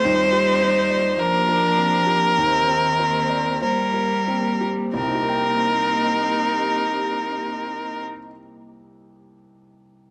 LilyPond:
<<
  \new Staff \with { instrumentName = "Violin" } { \time 4/4 \key c \minor \tempo 4 = 46 c''4 bes'2 bes'4 | bes'1 | }
  \new Staff \with { instrumentName = "Ambient pad" } { \time 4/4 \key c \minor <bes g' c''>1 | <bes g' ees''>1 | }
  \new Staff \with { instrumentName = "Felt piano" } { \time 4/4 \key c \minor ees,16 g'16 c''16 d''16 c''16 bes'16 c'16 g'16 ees,16 c'16 c''16 d''16 c''16 bes'16 c'16 g'16 | <c, c ees' g' bes' g''>1 | }
  \new Staff \with { instrumentName = "Viola" } { \time 4/4 \key c \minor ees'4 d'4 c'8 c'8 bes4 | ees'1 | }
  \new Staff \with { instrumentName = "Cello" } { \clef bass \time 4/4 \key c \minor g4 f4 ees4 g4 | c'1 | }
>>